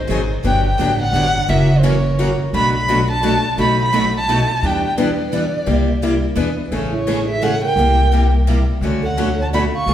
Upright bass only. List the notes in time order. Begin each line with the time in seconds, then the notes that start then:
0.09 G#1
0.44 G1
0.79 A1
1.13 G1
1.49 F#1
2.53 B1
3.57 B1
4.62 E2
5.67 C2
6.36 E2
6.71 A1
7.76 C2
8.81 D2
9.86 C#2